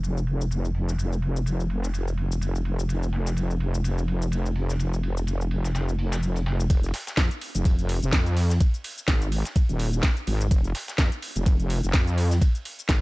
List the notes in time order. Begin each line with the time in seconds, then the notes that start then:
Already playing: F1
0.03 ride, cabasa
0.17 cabasa
0.27 ride
0.41 cabasa
0.51 ride, cabasa
0.65 cabasa
0.75 open hi-hat
0.88 snare, cabasa
0.98 ride, cabasa
1.13 cabasa
1.22 ride
1.36 cabasa
1.46 ride, cabasa
1.60 cabasa
1.70 ride
1.83 snare, cabasa
1.94 ride, cabasa
2.08 cabasa
2.17 ride
2.32 cabasa
2.41 ride, cabasa
2.55 cabasa
2.65 ride
2.79 cabasa
2.89 ride, cabasa
3.03 cabasa
3.13 snare, ride
3.26 snare, cabasa
3.37 ride, cabasa
3.51 cabasa
3.60 ride
3.74 cabasa
3.84 ride, cabasa
3.98 cabasa
4.08 ride
4.22 cabasa
4.32 ride, cabasa
4.46 cabasa
4.56 open hi-hat
4.69 snare, cabasa
4.79 ride, cabasa
4.93 cabasa
5.03 ride
5.17 cabasa
5.27 ride, cabasa
5.41 cabasa
5.51 ride
5.64 snare, cabasa
5.75 snare, ride, cabasa
5.89 cabasa
5.99 open hi-hat
6.12 snare, ride, cabasa
6.23 cabasa
6.36 open hi-hat, cabasa
6.46 snare, ride
6.60 cabasa
6.70 F1, kick, closed hi-hat, ride, cabasa
6.83 closed hi-hat, cabasa
6.94 snare, open hi-hat, ride
7.07 snare, closed hi-hat, cabasa
7.17 F2, kick, snare, closed hi-hat, ride, cabasa
7.31 closed hi-hat, cabasa
7.41 open hi-hat, ride
7.55 F1, closed hi-hat, cabasa
7.65 kick, closed hi-hat, ride, cabasa
7.79 closed hi-hat, cabasa
7.89 open hi-hat, ride
8.03 F1, closed hi-hat, cabasa
8.13 F2, kick, snare, closed hi-hat, ride, cabasa
8.26 closed hi-hat, cabasa
8.37 open hi-hat
8.50 snare, closed hi-hat, cabasa
8.60 kick, closed hi-hat, ride, cabasa
8.74 closed hi-hat, cabasa
8.84 open hi-hat, ride
8.98 closed hi-hat, cabasa
9.08 G#1, kick, snare, closed hi-hat, ride, cabasa
9.22 closed hi-hat, cabasa
9.32 open hi-hat, ride
9.45 snare, closed hi-hat, cabasa
9.56 kick, closed hi-hat, ride, cabasa
9.69 D#1, closed hi-hat, cabasa
9.79 open hi-hat, ride
9.93 closed hi-hat, cabasa
10.03 kick, snare, closed hi-hat, ride, cabasa
10.17 closed hi-hat, cabasa
10.27 G#1, open hi-hat, ride
10.41 closed hi-hat, cabasa
10.51 F1, kick, closed hi-hat, ride, cabasa
10.64 closed hi-hat, cabasa
10.75 snare, open hi-hat, ride
10.88 snare, closed hi-hat, cabasa
10.98 F2, kick, snare, closed hi-hat, ride, cabasa
11.12 closed hi-hat, cabasa
11.22 open hi-hat, ride
11.36 F1, closed hi-hat, cabasa
11.46 kick, closed hi-hat, ride, cabasa
11.60 closed hi-hat, cabasa
11.70 open hi-hat, ride
11.83 F1, closed hi-hat, cabasa
11.93 F2, kick, snare, closed hi-hat, ride, cabasa
12.07 closed hi-hat, cabasa
12.18 open hi-hat
12.31 snare, closed hi-hat, cabasa
12.42 kick, closed hi-hat, ride, cabasa
12.55 closed hi-hat, cabasa
12.65 open hi-hat, ride
12.79 closed hi-hat, cabasa
12.89 G#1, kick, snare, closed hi-hat, ride, cabasa